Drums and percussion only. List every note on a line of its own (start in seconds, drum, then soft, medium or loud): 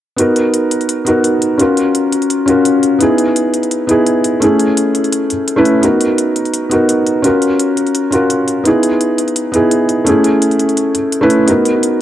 0.18 closed hi-hat medium
0.36 closed hi-hat medium
0.54 closed hi-hat medium
0.71 closed hi-hat medium
0.81 closed hi-hat soft
0.89 closed hi-hat medium
1.07 closed hi-hat medium
1.24 closed hi-hat medium
1.42 closed hi-hat medium
1.60 closed hi-hat medium
1.77 closed hi-hat medium
1.95 closed hi-hat medium
2.12 closed hi-hat medium
2.22 closed hi-hat soft
2.30 closed hi-hat medium
2.48 closed hi-hat medium
2.65 closed hi-hat medium
2.83 closed hi-hat medium
3.01 closed hi-hat medium
3.18 closed hi-hat medium
3.36 closed hi-hat medium
3.54 closed hi-hat medium
3.63 closed hi-hat soft
3.71 closed hi-hat medium
3.89 closed hi-hat medium
4.07 closed hi-hat medium
4.24 closed hi-hat medium
4.42 closed hi-hat medium
4.60 closed hi-hat medium
4.77 closed hi-hat medium
4.95 closed hi-hat medium
5.04 closed hi-hat soft
5.12 closed hi-hat medium
5.30 closed hi-hat medium
5.48 closed hi-hat medium
5.65 closed hi-hat medium
5.83 closed hi-hat medium
6.01 closed hi-hat medium
6.18 closed hi-hat medium
6.36 closed hi-hat medium
6.45 closed hi-hat soft
6.54 closed hi-hat medium
6.71 closed hi-hat medium
6.89 closed hi-hat medium
7.07 closed hi-hat medium
7.24 closed hi-hat medium
7.42 closed hi-hat medium
7.60 closed hi-hat medium
7.77 closed hi-hat medium
7.87 closed hi-hat soft
7.95 closed hi-hat medium
8.12 closed hi-hat medium
8.30 closed hi-hat medium
8.48 closed hi-hat medium
8.65 closed hi-hat medium
8.83 closed hi-hat medium
9.01 closed hi-hat medium
9.18 closed hi-hat medium
9.28 closed hi-hat soft
9.36 closed hi-hat medium
9.54 closed hi-hat medium
9.71 closed hi-hat medium
9.89 closed hi-hat medium
10.07 closed hi-hat medium
10.24 closed hi-hat medium
10.42 closed hi-hat medium
10.51 closed hi-hat soft
10.59 closed hi-hat medium
10.69 closed hi-hat soft
10.77 closed hi-hat medium
10.95 closed hi-hat medium
11.12 closed hi-hat medium
11.30 closed hi-hat medium
11.48 closed hi-hat medium
11.65 closed hi-hat medium
11.83 closed hi-hat medium